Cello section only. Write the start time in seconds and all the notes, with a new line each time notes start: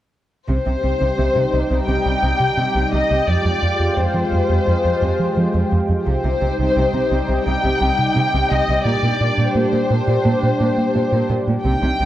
0.48 C3
0.66 C3
0.83 C3
1.01 C3
1.18 C3
1.35 C3
1.53 C3
1.70 C3
1.88 C3
2.05 C3
2.23 C3
2.57 C3
2.75 C3
2.93 C3
3.10 C3
3.28 F2
3.45 F2
3.63 F2
3.80 F2
3.98 F2
4.14 F2
4.32 F2
4.49 F2
4.67 F2
4.84 F2
5.01 F2
5.36 F2
5.54 F2
5.72 F2
5.89 F2
6.06 C3
6.25 C3
6.42 C3
6.59 C3
6.77 C3
6.94 C3
7.11 C3
7.29 C3
7.47 C3
7.64 C3
7.81 C3
8.16 C3
8.34 C3
8.51 C3
8.69 C3
8.86 A#2
9.04 A#2
9.21 A#2
9.38 A#2
9.56 A#2
9.73 A#2
9.91 A#2
10.07 A#2
10.25 A#2
10.43 A#2
10.60 A#2
10.95 A#2
11.13 A#2
11.30 A#2
11.48 A#2
11.65 C3
11.83 C3
12.00 C3